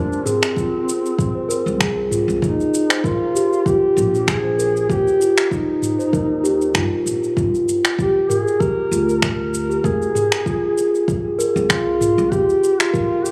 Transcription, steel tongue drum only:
0, 0, Header, 1, 2, 480
1, 0, Start_track
1, 0, Tempo, 618557
1, 1878, Time_signature, 4, 2, 24, 8
1, 10332, End_track
2, 0, Start_track
2, 0, Title_t, "Steel tongue drum"
2, 0, Program_c, 0, 114
2, 0, Note_on_c, 0, 70, 96
2, 186, Note_off_c, 0, 70, 0
2, 198, Note_on_c, 0, 68, 96
2, 322, Note_off_c, 0, 68, 0
2, 439, Note_on_c, 0, 65, 82
2, 563, Note_off_c, 0, 65, 0
2, 1049, Note_on_c, 0, 72, 74
2, 1147, Note_off_c, 0, 72, 0
2, 1155, Note_on_c, 0, 70, 105
2, 1385, Note_off_c, 0, 70, 0
2, 1397, Note_on_c, 0, 68, 100
2, 1522, Note_off_c, 0, 68, 0
2, 1636, Note_on_c, 0, 65, 73
2, 1761, Note_off_c, 0, 65, 0
2, 2247, Note_on_c, 0, 72, 76
2, 2346, Note_off_c, 0, 72, 0
2, 2358, Note_on_c, 0, 70, 104
2, 2587, Note_off_c, 0, 70, 0
2, 2595, Note_on_c, 0, 67, 103
2, 2721, Note_off_c, 0, 67, 0
2, 2837, Note_on_c, 0, 65, 89
2, 2962, Note_off_c, 0, 65, 0
2, 3448, Note_on_c, 0, 72, 68
2, 3547, Note_off_c, 0, 72, 0
2, 3555, Note_on_c, 0, 70, 94
2, 3786, Note_off_c, 0, 70, 0
2, 3797, Note_on_c, 0, 67, 96
2, 3922, Note_off_c, 0, 67, 0
2, 4036, Note_on_c, 0, 65, 71
2, 4161, Note_off_c, 0, 65, 0
2, 4648, Note_on_c, 0, 72, 78
2, 4746, Note_off_c, 0, 72, 0
2, 4756, Note_on_c, 0, 70, 109
2, 4986, Note_off_c, 0, 70, 0
2, 4996, Note_on_c, 0, 67, 102
2, 5121, Note_off_c, 0, 67, 0
2, 5238, Note_on_c, 0, 65, 82
2, 5362, Note_off_c, 0, 65, 0
2, 5717, Note_on_c, 0, 65, 77
2, 5842, Note_off_c, 0, 65, 0
2, 6328, Note_on_c, 0, 67, 70
2, 6427, Note_off_c, 0, 67, 0
2, 6435, Note_on_c, 0, 70, 97
2, 6665, Note_off_c, 0, 70, 0
2, 6674, Note_on_c, 0, 67, 110
2, 6800, Note_off_c, 0, 67, 0
2, 6915, Note_on_c, 0, 65, 78
2, 7041, Note_off_c, 0, 65, 0
2, 7523, Note_on_c, 0, 67, 79
2, 7624, Note_off_c, 0, 67, 0
2, 7634, Note_on_c, 0, 70, 102
2, 7865, Note_off_c, 0, 70, 0
2, 7876, Note_on_c, 0, 68, 97
2, 8001, Note_off_c, 0, 68, 0
2, 8116, Note_on_c, 0, 65, 86
2, 8241, Note_off_c, 0, 65, 0
2, 8727, Note_on_c, 0, 68, 72
2, 8826, Note_off_c, 0, 68, 0
2, 8836, Note_on_c, 0, 70, 102
2, 9066, Note_off_c, 0, 70, 0
2, 9077, Note_on_c, 0, 68, 102
2, 9202, Note_off_c, 0, 68, 0
2, 9318, Note_on_c, 0, 65, 74
2, 9442, Note_off_c, 0, 65, 0
2, 9929, Note_on_c, 0, 67, 74
2, 10027, Note_off_c, 0, 67, 0
2, 10036, Note_on_c, 0, 70, 103
2, 10266, Note_off_c, 0, 70, 0
2, 10276, Note_on_c, 0, 67, 105
2, 10332, Note_off_c, 0, 67, 0
2, 10332, End_track
0, 0, End_of_file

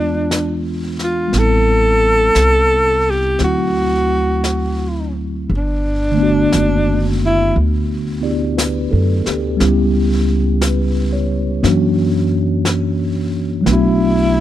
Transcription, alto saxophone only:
0, 0, Header, 1, 2, 480
1, 0, Start_track
1, 0, Key_signature, 1, "major"
1, 0, Tempo, 1022147
1, 622, Time_signature, 4, 2, 24, 8
1, 1104, Tempo, 1038062
1, 3984, Tempo, 1016949
1, 6733, End_track
2, 0, Start_track
2, 0, Title_t, "Alto saxophone"
2, 0, Program_c, 0, 65
2, 0, Note_on_c, 0, 62, 81
2, 289, Note_off_c, 0, 62, 0
2, 488, Note_on_c, 0, 65, 68
2, 651, Note_on_c, 0, 69, 90
2, 658, Note_off_c, 0, 65, 0
2, 1451, Note_on_c, 0, 67, 70
2, 1458, Note_off_c, 0, 69, 0
2, 1598, Note_off_c, 0, 67, 0
2, 1608, Note_on_c, 0, 66, 72
2, 2385, Note_off_c, 0, 66, 0
2, 2592, Note_on_c, 0, 62, 76
2, 3349, Note_off_c, 0, 62, 0
2, 3374, Note_on_c, 0, 64, 74
2, 3512, Note_off_c, 0, 64, 0
2, 6411, Note_on_c, 0, 64, 82
2, 6733, Note_off_c, 0, 64, 0
2, 6733, End_track
0, 0, End_of_file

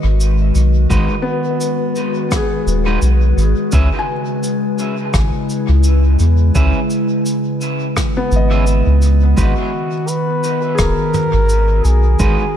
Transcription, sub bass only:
0, 0, Header, 1, 2, 480
1, 0, Start_track
1, 0, Key_signature, 5, "minor"
1, 0, Tempo, 705882
1, 615, Time_signature, 4, 2, 24, 8
1, 8547, End_track
2, 0, Start_track
2, 0, Title_t, "Sub bass"
2, 0, Program_c, 0, 38
2, 27, Note_on_c, 0, 32, 91
2, 354, Note_off_c, 0, 32, 0
2, 376, Note_on_c, 0, 35, 86
2, 590, Note_off_c, 0, 35, 0
2, 616, Note_on_c, 0, 32, 95
2, 733, Note_off_c, 0, 32, 0
2, 1814, Note_on_c, 0, 27, 93
2, 2029, Note_off_c, 0, 27, 0
2, 2054, Note_on_c, 0, 35, 77
2, 2269, Note_off_c, 0, 35, 0
2, 2293, Note_on_c, 0, 32, 91
2, 2411, Note_off_c, 0, 32, 0
2, 2536, Note_on_c, 0, 37, 97
2, 2653, Note_off_c, 0, 37, 0
2, 3497, Note_on_c, 0, 32, 89
2, 3613, Note_off_c, 0, 32, 0
2, 3869, Note_on_c, 0, 37, 91
2, 4195, Note_off_c, 0, 37, 0
2, 4217, Note_on_c, 0, 40, 80
2, 4430, Note_off_c, 0, 40, 0
2, 4456, Note_on_c, 0, 37, 95
2, 4572, Note_off_c, 0, 37, 0
2, 5657, Note_on_c, 0, 32, 96
2, 6003, Note_off_c, 0, 32, 0
2, 6030, Note_on_c, 0, 37, 86
2, 6356, Note_off_c, 0, 37, 0
2, 6376, Note_on_c, 0, 32, 101
2, 6493, Note_off_c, 0, 32, 0
2, 7336, Note_on_c, 0, 27, 91
2, 7452, Note_off_c, 0, 27, 0
2, 7707, Note_on_c, 0, 32, 93
2, 8034, Note_off_c, 0, 32, 0
2, 8055, Note_on_c, 0, 35, 87
2, 8270, Note_off_c, 0, 35, 0
2, 8295, Note_on_c, 0, 32, 98
2, 8412, Note_off_c, 0, 32, 0
2, 8547, End_track
0, 0, End_of_file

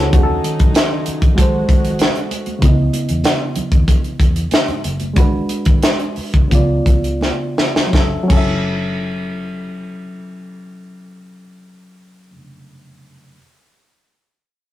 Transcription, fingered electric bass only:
0, 0, Header, 1, 3, 480
1, 0, Start_track
1, 0, Tempo, 624350
1, 101, Time_signature, 4, 2, 24, 8
1, 2981, Tempo, 643777
1, 3941, Tempo, 671141
1, 4901, Tempo, 710900
1, 5861, Tempo, 734394
1, 10301, End_track
2, 0, Start_track
2, 0, Title_t, "Fingered electric bass"
2, 0, Program_c, 0, 33
2, 103, Note_on_c, 0, 39, 92
2, 291, Note_off_c, 0, 39, 0
2, 462, Note_on_c, 0, 35, 88
2, 556, Note_off_c, 0, 35, 0
2, 940, Note_on_c, 0, 33, 81
2, 1034, Note_off_c, 0, 33, 0
2, 1062, Note_on_c, 0, 32, 94
2, 1249, Note_off_c, 0, 32, 0
2, 1300, Note_on_c, 0, 32, 92
2, 1582, Note_off_c, 0, 32, 0
2, 2019, Note_on_c, 0, 37, 94
2, 2207, Note_off_c, 0, 37, 0
2, 2383, Note_on_c, 0, 40, 77
2, 2475, Note_off_c, 0, 40, 0
2, 2860, Note_on_c, 0, 39, 82
2, 2956, Note_off_c, 0, 39, 0
2, 3221, Note_on_c, 0, 40, 88
2, 3408, Note_off_c, 0, 40, 0
2, 3583, Note_on_c, 0, 44, 82
2, 3676, Note_off_c, 0, 44, 0
2, 3705, Note_on_c, 0, 30, 80
2, 3944, Note_off_c, 0, 30, 0
2, 3944, Note_on_c, 0, 32, 100
2, 4130, Note_off_c, 0, 32, 0
2, 4301, Note_on_c, 0, 32, 84
2, 4393, Note_off_c, 0, 32, 0
2, 4782, Note_on_c, 0, 30, 85
2, 4878, Note_off_c, 0, 30, 0
2, 4908, Note_on_c, 0, 37, 92
2, 5091, Note_off_c, 0, 37, 0
2, 5141, Note_on_c, 0, 37, 84
2, 5422, Note_off_c, 0, 37, 0
2, 5865, Note_on_c, 0, 30, 80
2, 5997, Note_off_c, 0, 30, 0
2, 6105, Note_on_c, 0, 30, 92
2, 8737, Note_off_c, 0, 30, 0
2, 10301, End_track
3, 0, Start_track
3, 0, Title_t, "Muted fingered electric bass strokes"
3, 829, Note_on_c, 9, 29, 44
3, 906, Note_off_c, 9, 29, 0
3, 2746, Note_on_c, 9, 29, 45
3, 2823, Note_off_c, 9, 29, 0
3, 4663, Note_on_c, 9, 29, 40
3, 4735, Note_off_c, 9, 29, 0
3, 10301, End_track
0, 0, End_of_file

